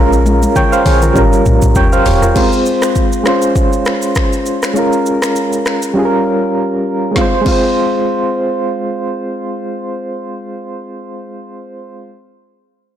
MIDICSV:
0, 0, Header, 1, 4, 480
1, 0, Start_track
1, 0, Key_signature, -4, "minor"
1, 0, Tempo, 600000
1, 1888, Time_signature, 4, 2, 24, 8
1, 10373, End_track
2, 0, Start_track
2, 0, Title_t, "Synth keys"
2, 0, Program_c, 0, 88
2, 0, Note_on_c, 0, 56, 76
2, 0, Note_on_c, 0, 61, 72
2, 0, Note_on_c, 0, 65, 71
2, 0, Note_on_c, 0, 70, 85
2, 138, Control_c, 0, 64, 127
2, 442, Note_off_c, 0, 65, 0
2, 447, Note_on_c, 0, 79, 65
2, 449, Note_off_c, 0, 70, 0
2, 453, Note_on_c, 0, 73, 56
2, 573, Note_off_c, 0, 79, 0
2, 576, Note_off_c, 0, 73, 0
2, 578, Note_on_c, 0, 77, 72
2, 583, Note_on_c, 0, 72, 63
2, 682, Note_off_c, 0, 77, 0
2, 684, Note_off_c, 0, 72, 0
2, 687, Note_on_c, 0, 73, 72
2, 692, Note_on_c, 0, 68, 64
2, 813, Note_off_c, 0, 73, 0
2, 815, Note_off_c, 0, 68, 0
2, 820, Note_on_c, 0, 70, 67
2, 825, Note_on_c, 0, 65, 61
2, 899, Note_off_c, 0, 56, 0
2, 905, Note_off_c, 0, 61, 0
2, 906, Note_on_c, 0, 55, 74
2, 919, Note_on_c, 0, 61, 70
2, 923, Note_off_c, 0, 65, 0
2, 932, Note_on_c, 0, 65, 70
2, 937, Note_off_c, 0, 70, 0
2, 939, Control_c, 0, 64, 0
2, 947, Note_on_c, 0, 70, 85
2, 1056, Control_c, 0, 64, 127
2, 1401, Note_off_c, 0, 65, 0
2, 1408, Note_off_c, 0, 70, 0
2, 1408, Note_on_c, 0, 79, 64
2, 1413, Note_on_c, 0, 73, 55
2, 1533, Note_off_c, 0, 79, 0
2, 1536, Note_off_c, 0, 73, 0
2, 1540, Note_on_c, 0, 77, 70
2, 1544, Note_on_c, 0, 72, 59
2, 1642, Note_off_c, 0, 77, 0
2, 1645, Note_off_c, 0, 72, 0
2, 1647, Note_on_c, 0, 73, 71
2, 1653, Note_on_c, 0, 67, 60
2, 1773, Note_off_c, 0, 73, 0
2, 1776, Note_off_c, 0, 67, 0
2, 1778, Note_on_c, 0, 70, 65
2, 1784, Note_on_c, 0, 65, 58
2, 1858, Note_off_c, 0, 55, 0
2, 1864, Note_off_c, 0, 61, 0
2, 1877, Note_on_c, 0, 56, 74
2, 1881, Note_off_c, 0, 65, 0
2, 1884, Note_on_c, 0, 60, 71
2, 1890, Note_on_c, 0, 65, 68
2, 1897, Note_on_c, 0, 72, 81
2, 1899, Control_c, 0, 64, 0
2, 2007, Note_off_c, 0, 70, 0
2, 2034, Control_c, 0, 64, 127
2, 2578, Note_off_c, 0, 56, 0
2, 2588, Note_on_c, 0, 56, 74
2, 2602, Note_on_c, 0, 61, 68
2, 2605, Note_off_c, 0, 65, 0
2, 2606, Note_off_c, 0, 60, 0
2, 2613, Note_off_c, 0, 72, 0
2, 2615, Note_on_c, 0, 65, 72
2, 2618, Control_c, 0, 64, 0
2, 2627, Note_on_c, 0, 72, 83
2, 2766, Control_c, 0, 64, 127
2, 3774, Note_off_c, 0, 56, 0
2, 3781, Note_off_c, 0, 61, 0
2, 3787, Note_off_c, 0, 65, 0
2, 3789, Note_on_c, 0, 56, 73
2, 3794, Note_off_c, 0, 72, 0
2, 3802, Note_on_c, 0, 61, 69
2, 3816, Note_on_c, 0, 65, 66
2, 3818, Control_c, 0, 64, 0
2, 3829, Note_on_c, 0, 70, 80
2, 3964, Control_c, 0, 64, 127
2, 4739, Note_off_c, 0, 56, 0
2, 4746, Note_off_c, 0, 61, 0
2, 4750, Note_on_c, 0, 55, 74
2, 4753, Note_off_c, 0, 65, 0
2, 4760, Note_off_c, 0, 70, 0
2, 4763, Note_on_c, 0, 61, 69
2, 4776, Note_on_c, 0, 65, 66
2, 4779, Control_c, 0, 64, 0
2, 4790, Note_on_c, 0, 68, 65
2, 4836, Note_off_c, 0, 68, 0
2, 4841, Note_on_c, 0, 70, 84
2, 4937, Control_c, 0, 64, 127
2, 5690, Note_on_c, 0, 56, 77
2, 5700, Note_off_c, 0, 55, 0
2, 5706, Note_off_c, 0, 61, 0
2, 5713, Note_off_c, 0, 65, 0
2, 5716, Note_on_c, 0, 60, 73
2, 5739, Control_c, 0, 64, 0
2, 5743, Note_on_c, 0, 65, 68
2, 5746, Note_off_c, 0, 70, 0
2, 5769, Note_on_c, 0, 72, 86
2, 5850, Note_off_c, 0, 56, 0
2, 5864, Note_off_c, 0, 60, 0
2, 5879, Note_off_c, 0, 65, 0
2, 5882, Control_c, 0, 64, 127
2, 5893, Note_off_c, 0, 72, 0
2, 5930, Note_on_c, 0, 56, 83
2, 5957, Note_on_c, 0, 60, 73
2, 5984, Note_on_c, 0, 65, 75
2, 6010, Note_on_c, 0, 72, 88
2, 8797, Note_off_c, 0, 56, 0
2, 8810, Note_off_c, 0, 60, 0
2, 8824, Note_off_c, 0, 65, 0
2, 8837, Note_off_c, 0, 72, 0
2, 9659, Control_c, 0, 64, 0
2, 10373, End_track
3, 0, Start_track
3, 0, Title_t, "808-style bass"
3, 0, Program_c, 1, 38
3, 0, Note_on_c, 1, 34, 116
3, 358, Note_off_c, 1, 34, 0
3, 686, Note_on_c, 1, 34, 91
3, 882, Note_off_c, 1, 34, 0
3, 926, Note_on_c, 1, 31, 100
3, 1122, Note_off_c, 1, 31, 0
3, 1167, Note_on_c, 1, 34, 97
3, 1275, Note_off_c, 1, 34, 0
3, 1298, Note_on_c, 1, 34, 91
3, 1387, Note_off_c, 1, 34, 0
3, 1407, Note_on_c, 1, 31, 100
3, 1603, Note_off_c, 1, 31, 0
3, 1648, Note_on_c, 1, 27, 99
3, 1844, Note_off_c, 1, 27, 0
3, 10373, End_track
4, 0, Start_track
4, 0, Title_t, "Drums"
4, 102, Note_on_c, 9, 82, 59
4, 182, Note_off_c, 9, 82, 0
4, 208, Note_on_c, 9, 48, 67
4, 210, Note_on_c, 9, 82, 64
4, 288, Note_off_c, 9, 48, 0
4, 290, Note_off_c, 9, 82, 0
4, 340, Note_on_c, 9, 48, 60
4, 341, Note_on_c, 9, 82, 93
4, 420, Note_off_c, 9, 48, 0
4, 421, Note_off_c, 9, 82, 0
4, 447, Note_on_c, 9, 36, 90
4, 447, Note_on_c, 9, 82, 69
4, 448, Note_on_c, 9, 47, 71
4, 527, Note_off_c, 9, 36, 0
4, 527, Note_off_c, 9, 82, 0
4, 528, Note_off_c, 9, 47, 0
4, 582, Note_on_c, 9, 82, 60
4, 662, Note_off_c, 9, 82, 0
4, 686, Note_on_c, 9, 46, 77
4, 686, Note_on_c, 9, 82, 53
4, 687, Note_on_c, 9, 47, 79
4, 766, Note_off_c, 9, 46, 0
4, 766, Note_off_c, 9, 82, 0
4, 767, Note_off_c, 9, 47, 0
4, 818, Note_on_c, 9, 82, 85
4, 820, Note_on_c, 9, 47, 74
4, 898, Note_off_c, 9, 82, 0
4, 900, Note_off_c, 9, 47, 0
4, 926, Note_on_c, 9, 36, 114
4, 927, Note_on_c, 9, 45, 92
4, 928, Note_on_c, 9, 82, 75
4, 1006, Note_off_c, 9, 36, 0
4, 1007, Note_off_c, 9, 45, 0
4, 1008, Note_off_c, 9, 82, 0
4, 1062, Note_on_c, 9, 82, 55
4, 1142, Note_off_c, 9, 82, 0
4, 1166, Note_on_c, 9, 82, 48
4, 1168, Note_on_c, 9, 45, 98
4, 1246, Note_off_c, 9, 82, 0
4, 1248, Note_off_c, 9, 45, 0
4, 1296, Note_on_c, 9, 82, 97
4, 1299, Note_on_c, 9, 45, 79
4, 1376, Note_off_c, 9, 82, 0
4, 1379, Note_off_c, 9, 45, 0
4, 1403, Note_on_c, 9, 82, 88
4, 1406, Note_on_c, 9, 43, 102
4, 1407, Note_on_c, 9, 36, 101
4, 1483, Note_off_c, 9, 82, 0
4, 1486, Note_off_c, 9, 43, 0
4, 1487, Note_off_c, 9, 36, 0
4, 1540, Note_on_c, 9, 82, 54
4, 1620, Note_off_c, 9, 82, 0
4, 1646, Note_on_c, 9, 43, 111
4, 1646, Note_on_c, 9, 46, 79
4, 1646, Note_on_c, 9, 82, 59
4, 1726, Note_off_c, 9, 43, 0
4, 1726, Note_off_c, 9, 46, 0
4, 1726, Note_off_c, 9, 82, 0
4, 1778, Note_on_c, 9, 43, 101
4, 1781, Note_on_c, 9, 82, 94
4, 1858, Note_off_c, 9, 43, 0
4, 1861, Note_off_c, 9, 82, 0
4, 1886, Note_on_c, 9, 49, 90
4, 1886, Note_on_c, 9, 82, 71
4, 1887, Note_on_c, 9, 36, 112
4, 1966, Note_off_c, 9, 49, 0
4, 1966, Note_off_c, 9, 82, 0
4, 1967, Note_off_c, 9, 36, 0
4, 2020, Note_on_c, 9, 82, 53
4, 2100, Note_off_c, 9, 82, 0
4, 2127, Note_on_c, 9, 82, 60
4, 2207, Note_off_c, 9, 82, 0
4, 2257, Note_on_c, 9, 37, 90
4, 2259, Note_on_c, 9, 82, 92
4, 2266, Note_on_c, 9, 26, 74
4, 2337, Note_off_c, 9, 37, 0
4, 2339, Note_off_c, 9, 82, 0
4, 2346, Note_off_c, 9, 26, 0
4, 2364, Note_on_c, 9, 82, 72
4, 2366, Note_on_c, 9, 36, 91
4, 2444, Note_off_c, 9, 82, 0
4, 2446, Note_off_c, 9, 36, 0
4, 2499, Note_on_c, 9, 82, 60
4, 2579, Note_off_c, 9, 82, 0
4, 2605, Note_on_c, 9, 37, 92
4, 2605, Note_on_c, 9, 82, 52
4, 2615, Note_on_c, 9, 26, 71
4, 2685, Note_off_c, 9, 37, 0
4, 2685, Note_off_c, 9, 82, 0
4, 2695, Note_off_c, 9, 26, 0
4, 2736, Note_on_c, 9, 82, 83
4, 2816, Note_off_c, 9, 82, 0
4, 2845, Note_on_c, 9, 36, 114
4, 2846, Note_on_c, 9, 82, 71
4, 2925, Note_off_c, 9, 36, 0
4, 2926, Note_off_c, 9, 82, 0
4, 2981, Note_on_c, 9, 82, 56
4, 3061, Note_off_c, 9, 82, 0
4, 3085, Note_on_c, 9, 82, 49
4, 3090, Note_on_c, 9, 37, 97
4, 3100, Note_on_c, 9, 26, 75
4, 3165, Note_off_c, 9, 82, 0
4, 3170, Note_off_c, 9, 37, 0
4, 3180, Note_off_c, 9, 26, 0
4, 3216, Note_on_c, 9, 82, 93
4, 3296, Note_off_c, 9, 82, 0
4, 3323, Note_on_c, 9, 82, 84
4, 3328, Note_on_c, 9, 36, 96
4, 3328, Note_on_c, 9, 37, 89
4, 3338, Note_on_c, 9, 26, 73
4, 3403, Note_off_c, 9, 82, 0
4, 3408, Note_off_c, 9, 36, 0
4, 3408, Note_off_c, 9, 37, 0
4, 3418, Note_off_c, 9, 26, 0
4, 3461, Note_on_c, 9, 82, 52
4, 3541, Note_off_c, 9, 82, 0
4, 3568, Note_on_c, 9, 82, 53
4, 3648, Note_off_c, 9, 82, 0
4, 3702, Note_on_c, 9, 37, 92
4, 3702, Note_on_c, 9, 82, 89
4, 3712, Note_on_c, 9, 26, 70
4, 3782, Note_off_c, 9, 37, 0
4, 3782, Note_off_c, 9, 82, 0
4, 3792, Note_off_c, 9, 26, 0
4, 3808, Note_on_c, 9, 82, 66
4, 3888, Note_off_c, 9, 82, 0
4, 3941, Note_on_c, 9, 82, 52
4, 4021, Note_off_c, 9, 82, 0
4, 4049, Note_on_c, 9, 82, 59
4, 4129, Note_off_c, 9, 82, 0
4, 4178, Note_on_c, 9, 37, 96
4, 4180, Note_on_c, 9, 82, 92
4, 4188, Note_on_c, 9, 26, 70
4, 4258, Note_off_c, 9, 37, 0
4, 4260, Note_off_c, 9, 82, 0
4, 4268, Note_off_c, 9, 26, 0
4, 4287, Note_on_c, 9, 82, 67
4, 4367, Note_off_c, 9, 82, 0
4, 4421, Note_on_c, 9, 82, 61
4, 4501, Note_off_c, 9, 82, 0
4, 4527, Note_on_c, 9, 37, 86
4, 4527, Note_on_c, 9, 82, 52
4, 4537, Note_on_c, 9, 26, 71
4, 4607, Note_off_c, 9, 37, 0
4, 4607, Note_off_c, 9, 82, 0
4, 4617, Note_off_c, 9, 26, 0
4, 4659, Note_on_c, 9, 82, 81
4, 4739, Note_off_c, 9, 82, 0
4, 5727, Note_on_c, 9, 38, 79
4, 5728, Note_on_c, 9, 36, 102
4, 5807, Note_off_c, 9, 38, 0
4, 5808, Note_off_c, 9, 36, 0
4, 5967, Note_on_c, 9, 49, 83
4, 5968, Note_on_c, 9, 36, 100
4, 6047, Note_off_c, 9, 49, 0
4, 6048, Note_off_c, 9, 36, 0
4, 10373, End_track
0, 0, End_of_file